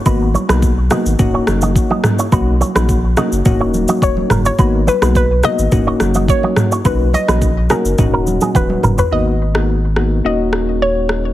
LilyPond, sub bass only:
\new Staff \with { instrumentName = "Sub bass" } { \clef bass \time 4/4 \key dis \phrygian \tempo 4 = 106 gis,,8. b,,4 gis,,16 dis,,8 fis,,8. r8. | b,,8. ais,,4 fis,,16 dis,,4 dis,,8 fis,,8 | gis,,8. b,,4 gis,,16 dis,,8 fis,,8. r8. | b,,8. ais,,4 fis,,16 dis,,4 dis,,8 fis,,8 |
gis,,2 dis,,2 | }